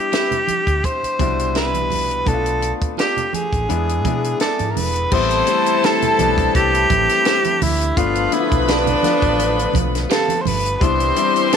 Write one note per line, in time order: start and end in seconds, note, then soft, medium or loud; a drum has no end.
0.00 0.51 G3 medium
0.00 0.51 B3 medium
0.00 0.51 D4 medium
0.00 0.51 E4 medium
0.00 0.86 G4 medium
0.12 0.33 G4 medium
0.12 0.34 B4 medium
0.12 0.34 E5 medium
0.12 snare loud
0.12 closed hi-hat medium
0.12 muted conga soft
0.31 closed hi-hat soft
0.31 low conga medium
0.47 muted fingered electric bass stroke soft
0.47 closed hi-hat medium
0.47 muted conga soft
0.47 high conga medium
0.67 0.80 D2 medium
0.67 kick medium
0.67 closed hi-hat soft
0.83 1.56 C5 loud
0.83 kick medium
0.83 closed hi-hat medium
0.83 muted conga soft
1.03 muted fingered electric bass stroke soft
1.03 closed hi-hat soft
1.19 2.22 C2 medium
1.19 2.03 B2 medium
1.19 2.03 G3 medium
1.19 2.03 D4 medium
1.19 2.04 E4 medium
1.19 kick medium
1.19 closed hi-hat medium
1.19 muted conga soft
1.19 high conga medium
1.39 closed hi-hat soft
1.55 1.76 G4 medium
1.55 1.77 B4 medium
1.55 2.29 B4 medium
1.55 1.77 E5 medium
1.55 snare loud
1.55 closed hi-hat medium
1.55 muted conga soft
1.74 closed hi-hat soft
1.74 high conga soft
1.90 open hi-hat medium
1.90 muted conga soft
1.90 high conga medium
1.90 low conga medium
2.11 closed hi-hat soft
2.26 2.71 B1 loud
2.26 3.37 A3 medium
2.26 3.37 B3 medium
2.26 3.37 D4 medium
2.26 2.34 E4 medium
2.26 2.72 A4 medium
2.26 kick medium
2.26 closed hi-hat medium
2.26 muted conga soft
2.26 low conga medium
2.33 3.40 F4 medium
2.46 closed hi-hat soft
2.61 closed hi-hat medium
2.61 muted conga soft
2.82 muted fingered electric bass stroke soft
2.82 kick medium
2.82 closed hi-hat soft
2.97 3.19 F4 medium
2.97 3.36 G4 medium
2.97 3.19 A4 medium
2.97 3.20 D5 medium
2.97 snare loud
2.97 closed hi-hat medium
2.97 muted conga soft
3.17 closed hi-hat soft
3.17 low conga medium
3.33 4.40 G#4 medium
3.33 muted fingered electric bass stroke soft
3.33 closed hi-hat medium
3.33 muted conga soft
3.33 high conga medium
3.53 3.66 A1 medium
3.53 kick medium
3.53 closed hi-hat soft
3.69 4.05 E2 medium
3.69 3.98 G#3 medium
3.69 3.98 B3 medium
3.69 3.98 D4 medium
3.69 3.99 E4 medium
3.69 closed hi-hat medium
3.69 muted conga soft
3.89 closed hi-hat soft
4.04 4.34 B2 medium
4.04 4.88 G#3 medium
4.04 4.89 B3 medium
4.04 4.89 D4 medium
4.04 4.89 E4 medium
4.04 kick medium
4.04 closed hi-hat medium
4.04 muted conga soft
4.04 high conga medium
4.24 closed hi-hat medium
4.40 4.62 E4 medium
4.40 4.62 G#4 medium
4.40 4.72 A4 medium
4.40 4.63 D5 medium
4.40 snare medium
4.40 closed hi-hat medium
4.40 muted conga soft
4.59 4.73 G#2 medium
4.59 closed hi-hat soft
4.59 high conga soft
4.71 4.79 A#4 medium
4.76 5.05 E1 medium
4.76 5.14 B4 medium
4.76 open hi-hat medium
4.76 muted conga soft
4.76 high conga medium
4.76 low conga medium
4.96 closed hi-hat soft
5.12 5.41 A1 medium
5.12 7.57 E3 medium
5.12 5.40 G3 medium
5.12 7.57 A3 medium
5.12 5.40 B3 medium
5.12 7.57 C4 medium
5.12 5.40 C4 medium
5.12 7.57 E4 medium
5.12 5.40 E4 medium
5.12 7.57 A4 medium
5.12 5.86 C5 loud
5.12 7.57 A5 loud
5.12 kick medium
5.12 crash medium
5.12 muted conga soft
5.30 closed hi-hat soft
5.47 6.04 G3 medium
5.47 6.04 A3 medium
5.47 6.04 C4 medium
5.47 6.04 E4 medium
5.47 closed hi-hat medium
5.47 muted conga soft
5.66 closed hi-hat medium
5.83 6.05 G4 medium
5.83 6.55 A4 loud
5.83 6.05 C5 medium
5.83 6.05 E5 medium
5.83 snare loud
5.83 closed hi-hat medium
5.83 muted conga soft
6.02 closed hi-hat medium
6.02 low conga medium
6.19 6.48 B1 medium
6.19 7.29 G3 medium
6.19 7.29 B3 medium
6.19 7.29 C4 medium
6.19 7.30 D4 medium
6.19 closed hi-hat medium
6.19 muted conga soft
6.19 high conga medium
6.38 kick medium
6.38 closed hi-hat soft
6.55 6.84 C2 medium
6.55 7.64 G4 loud
6.55 kick medium
6.55 closed hi-hat medium
6.74 closed hi-hat soft
6.90 7.06 A1 medium
6.90 kick medium
6.90 closed hi-hat medium
6.90 high conga medium
7.09 snare soft
7.09 closed hi-hat medium
7.25 7.47 G4 medium
7.25 7.48 C5 medium
7.25 7.48 E5 medium
7.25 snare loud
7.25 closed hi-hat medium
7.44 closed hi-hat medium
7.44 high conga medium
7.62 7.90 D2 medium
7.62 7.99 E4 medium
7.62 open hi-hat medium
7.62 muted conga soft
7.62 high conga medium
7.62 low conga medium
7.81 closed hi-hat soft
7.96 8.26 G1 loud
7.96 10.42 D3 medium
7.96 10.42 F3 medium
7.96 8.25 A3 medium
7.96 8.25 B3 medium
7.96 10.42 B3 medium
7.96 8.25 D4 medium
7.96 10.42 F4 medium
7.96 8.35 F4 medium
7.96 8.25 F4 medium
7.96 10.42 B4 medium
7.96 10.42 B5 loud
7.96 kick loud
7.96 closed hi-hat medium
7.96 muted conga soft
8.15 closed hi-hat soft
8.32 8.88 A3 medium
8.32 8.89 B3 medium
8.32 8.89 D4 medium
8.32 8.40 E4 medium
8.32 8.63 E4 medium
8.32 closed hi-hat medium
8.32 muted conga soft
8.39 8.92 F4 medium
8.52 8.94 B1 medium
8.52 kick medium
8.52 closed hi-hat medium
8.63 8.71 E4 medium
8.68 9.85 D4 loud
8.68 8.89 G4 medium
8.68 8.90 B4 medium
8.68 8.90 F5 medium
8.68 snare loud
8.68 closed hi-hat medium
8.68 muted conga soft
8.87 closed hi-hat soft
8.87 low conga medium
9.03 10.13 A3 medium
9.03 10.14 B3 medium
9.03 10.14 D4 medium
9.03 10.14 F4 medium
9.03 muted fingered electric bass stroke soft
9.03 snare soft
9.03 closed hi-hat medium
9.03 muted conga soft
9.03 high conga medium
9.22 9.65 A1 medium
9.22 kick medium
9.22 closed hi-hat soft
9.39 closed hi-hat medium
9.39 muted conga soft
9.59 closed hi-hat soft
9.73 10.04 B1 medium
9.73 kick medium
9.73 closed hi-hat medium
9.73 high conga medium
9.95 snare soft
9.95 closed hi-hat medium
10.10 10.31 G4 medium
10.10 10.42 A4 medium
10.10 10.32 B4 medium
10.10 10.32 F5 medium
10.10 snare loud
10.10 closed hi-hat medium
10.28 closed hi-hat medium
10.28 high conga medium
10.41 10.49 C5 medium
10.45 10.75 G1 medium
10.45 10.76 B4 medium
10.45 open hi-hat medium
10.45 high conga medium
10.45 low conga medium
10.66 closed hi-hat soft
10.76 10.84 B4 medium
10.80 11.10 C2 loud
10.80 11.57 E3 medium
10.80 11.09 G3 medium
10.80 11.57 G3 medium
10.80 11.09 B3 medium
10.80 11.57 C4 medium
10.80 11.57 C4 loud
10.80 11.09 D4 medium
10.80 11.10 E4 medium
10.80 11.57 G4 medium
10.80 11.53 C5 loud
10.80 11.57 C6 loud
10.80 kick loud
10.80 closed hi-hat medium
10.80 muted conga soft
11.00 closed hi-hat medium
11.16 11.57 G3 medium
11.16 11.57 C4 medium
11.16 11.57 D4 medium
11.16 11.57 E4 medium
11.16 closed hi-hat medium
11.16 muted conga soft
11.36 closed hi-hat medium
11.52 11.57 G4 medium
11.52 11.57 B4 medium
11.52 11.57 E5 medium
11.52 snare loud
11.52 closed hi-hat loud
11.52 muted conga soft